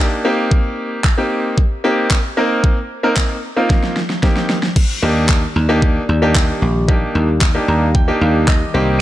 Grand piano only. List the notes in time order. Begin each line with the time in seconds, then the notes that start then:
0.00 A#3 D4 D#4 G4
0.25 A#3 C4 D#4 G4
1.18 A#3 C4 D#4 G4
1.84 A#3 C4 D#4 G4
2.37 A#3 C4 D#4 A#4
3.03 A#3 C4 D#4 A#4
3.57 A#3 C4 D#4 F4
4.23 A#3 C4 D#4 G4
5.03 A#3 D4 D#4 G4
5.69 A#3 D4 D#4 G4
6.22 A#3 D4 D#4 G4
6.88 A#3 D4 D#4 G4
7.55 A#3 D4 D#4 G4
7.68 A#5
7.95 G5
8.08 A#3 D4 D#4 G4
8.21 F5
8.48 D#5
8.74 A#3 C4 D#4 G4